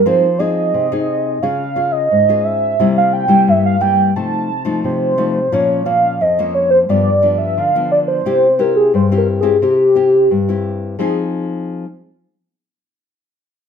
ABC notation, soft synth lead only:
X:1
M:4/4
L:1/16
Q:1/4=88
K:Fm
V:1 name="Soft synth lead"
c2 e6 f3 e3 =e2- | =e f g2 e f g2 =a4 c4 | d2 f2 e2 d c =d3 =e f2 d c- | c2 B A (3c2 B2 A2 G6 z2 |
A2 z12 z2 |]